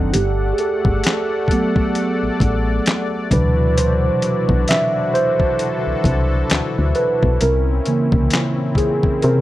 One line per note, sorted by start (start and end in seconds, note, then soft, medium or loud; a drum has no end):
0.00 0.12 F#1 medium
0.00 0.15 D#3 medium
0.00 0.14 F#3 soft
0.00 0.12 C4 medium
0.00 0.15 C4 medium
0.00 0.12 D4 medium
0.00 0.12 D#4 medium
0.00 0.16 A4 medium
0.00 3.27 F#5 medium
0.13 0.53 G1 loud
0.13 3.28 A3 medium
0.13 0.54 G4 medium
0.13 3.28 A4 medium
0.13 5.09 D5 medium
0.13 closed hi-hat loud
0.53 0.59 G#4 medium
0.58 1.91 A4 medium
0.58 closed hi-hat medium
0.85 1.02 G1 medium
0.85 kick medium
1.04 snare loud
1.04 closed hi-hat medium
1.08 clap medium
1.48 2.82 F#3 medium
1.48 2.82 A3 medium
1.48 2.83 B3 medium
1.48 kick medium
1.48 closed hi-hat medium
1.76 kick medium
1.95 closed hi-hat medium
2.23 2.30 A1 soft
2.40 2.80 A1 medium
2.40 kick loud
2.40 closed hi-hat medium
2.86 snare loud
2.86 clap medium
2.86 closed hi-hat medium
3.30 4.10 D2 loud
3.30 4.65 B2 medium
3.30 4.64 C3 soft
3.30 7.36 D3 medium
3.30 4.64 E3 medium
3.30 4.64 F#3 medium
3.30 7.36 D4 medium
3.30 9.41 E4 medium
3.30 7.36 F#4 medium
3.30 3.79 B4 medium
3.30 kick loud
3.30 closed hi-hat medium
3.78 4.71 C5 medium
3.78 closed hi-hat medium
4.22 closed hi-hat medium
4.49 4.66 B1 medium
4.49 kick medium
4.68 5.10 E5 loud
4.68 snare loud
4.68 closed hi-hat loud
4.72 clap loud
5.12 7.37 A4 medium
5.12 7.01 C5 loud
5.12 closed hi-hat medium
5.40 kick medium
5.59 closed hi-hat medium
5.87 5.94 C2 medium
6.04 6.44 C2 medium
6.04 kick loud
6.04 closed hi-hat medium
6.50 6.62 D2 medium
6.50 snare loud
6.50 clap medium
6.50 closed hi-hat medium
6.79 6.94 D2 medium
6.95 7.42 B4 loud
6.95 closed hi-hat medium
7.23 7.39 B1 medium
7.23 kick loud
7.40 7.81 C2 loud
7.40 9.41 A#2 medium
7.40 9.41 C4 medium
7.40 9.41 C#4 medium
7.40 8.81 A#4 medium
7.40 closed hi-hat medium
7.86 8.50 C#3 medium
7.86 8.50 E3 soft
7.86 8.50 A#3 medium
7.86 closed hi-hat medium
8.12 8.29 C2 medium
8.12 kick loud
8.30 snare loud
8.30 closed hi-hat medium
8.35 clap loud
8.75 9.24 G#4 medium
8.75 kick medium
8.75 closed hi-hat medium
9.03 kick medium
9.22 9.41 C3 loud
9.22 9.41 A#4 medium
9.22 closed hi-hat medium